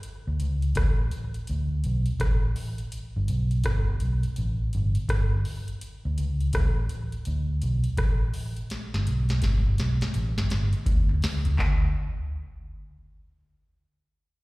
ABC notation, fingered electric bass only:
X:1
M:4/4
L:1/16
Q:"Swing 16ths" 1/4=83
K:Glyd
V:1 name="Fingered electric bass" clef=bass
z D,, C,,2 A,,,2 z2 D,,2 B,,, z A,,,2 z2 | z G,,, B,,,2 G,,, G,,, B,,, z A,,,2 G,,, z G,,,2 z2 | z D,, C,,2 A,,,2 z2 D,,2 B,,, z A,,,2 z2 | z G,,, B,,,2 G,,, G,,, B,,, z A,,, G,,, G,,, z D,,2 C,,2 |
D,,2 z12 z2 |]